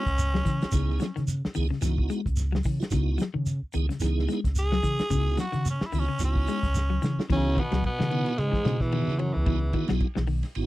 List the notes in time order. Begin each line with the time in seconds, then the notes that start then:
Already playing: C#4
0.06 C#2, kick, closed hi-hat
0.18 closed hi-hat, shekere
0.34 F#3, snare
0.45 C#3 E3, kick, snare, closed hi-hat, shekere
0.62 E4 F#4, muted fingered electric bass stroke, snare, closed hi-hat
0.72 C#2 C#3 B3 D#4 E4 G#4, kick, snare, closed hi-hat, shekere
0.90 snare
1.00 F#3, snare, closed hi-hat, shekere
1.16 C#3 D#3, snare, closed hi-hat
1.28 closed hi-hat, shekere
1.45 muted fingered electric bass stroke, snare
1.55 C#2 D#3 B3 D#4 E4 G#4, open hi-hat, shekere
1.70 C#3, snare
1.81 C#2 E3 B3 D#4 E4 F#4, closed hi-hat, shekere
1.85 snare
1.98 kick
2.10 G#3, closed hi-hat, shekere
2.26 C#2, kick, closed hi-hat
2.36 snare, closed hi-hat, shekere
2.52 F#3, snare
2.63 C#3 E3, kick, open hi-hat, shekere
2.80 E4 F#4, muted fingered electric bass stroke, snare, closed hi-hat
2.91 C#2 C#3 B3 D#4 E4 F#4, kick, snare, closed hi-hat, shekere
3.18 F#3, snare, closed hi-hat, shekere
3.34 C#3 D#3
3.46 closed hi-hat, shekere
3.63 muted fingered electric bass stroke
3.73 C#2 D#3 B3 D#4 E4 G#4, closed hi-hat, shekere
3.89 C#3, snare, closed hi-hat
4.00 C#2 E3 B3 D#4 E4 G#4, closed hi-hat, shekere
4.04 snare
4.19 snare
4.29 G#3, snare, closed hi-hat, shekere
4.44 C#2, kick, snare, closed hi-hat
4.55 G#4, closed hi-hat, shekere
4.72 F#3, snare
4.83 C#3 E3, kick, closed hi-hat, shekere
4.99 E4 G#4, muted fingered electric bass stroke, snare, closed hi-hat
5.10 C#2 C#3 D#4 E4 F#4, kick, closed hi-hat, shekere
5.14 B3
5.37 F#3 F#4, snare, closed hi-hat, shekere
5.52 C#3 D#3, snare, closed hi-hat
5.65 closed hi-hat, shekere
5.70 C#4
5.81 muted fingered electric bass stroke, snare
5.86 E4
5.92 C#2 D#3 B3 D#4 E4 F#4, snare, open hi-hat, shekere
5.99 C#4
6.09 C#3
6.19 C#2 B3 D#4 E4 F#4, muted clean electric guitar stroke, snare, closed hi-hat, shekere
6.24 C#4
6.36 kick
6.48 G#3, snare, closed hi-hat, shekere
6.63 C#2, kick, snare, closed hi-hat
6.75 snare, shekere
6.90 F#3
7.02 C#3 E3, snare, shekere
7.17 E4 F#4, muted fingered electric bass stroke, snare
7.30 C#2 E3 B3 C#4 D#4 E4 F#4, kick, crash
7.35 C#3
7.56 D#3 B3, kick, ride bell
7.61 B2
7.72 C#2 F#3, snare, ride bell
7.84 B2 B3, kick, ride bell
7.99 C#3 E3, snare
8.11 D#3 B3 D#4 E4 F#4, ride bell
8.26 snare, ride bell
8.38 C#3 G#3, snare, ride bell
8.43 G#2
8.52 E3, kick, snare
8.64 B2 C#3 B3 D#4 E4 F#4, snare, ride bell
8.80 E2 E3, kick, snare
8.92 D#3 B3 D#4 E4 F#4, ride bell
9.08 C#3, snare
9.19 F#2 E3 F#3, ride bell
9.33 C#2 E2 E3
9.46 C#2 E3 B3 D#4 E4 F#4, kick, ride bell
9.73 D#3 B3 D#4 E4 F#4, kick, ride bell
9.88 B1 F#3, snare, ride bell
10.00 kick, ride bell
10.15 B1 E3, snare
10.27 D#3, open hi-hat
10.43 snare, ride bell
10.55 G#1 B3 D#4 E4 F#4, ride bell